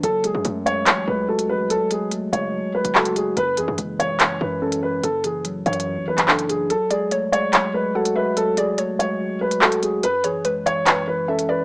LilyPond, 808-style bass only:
\new Staff \with { instrumentName = "808-style bass" } { \clef bass \time 4/4 \key fis \minor \tempo 4 = 144 fis,,8. fis,16 fis,4 a,,8 cis,4 a,,16. cis,32~ | cis,16 r4 r16 fis,,8. r8 fis,,4~ fis,,16 | fis,,8 fis,16 fis,16 fis,,8. e,,16. fis,,16. fis,4. | fis,,4. fis,8. gis,,16 fis,16 fis,,4~ fis,,16 |
r1 | r1 | r1 | }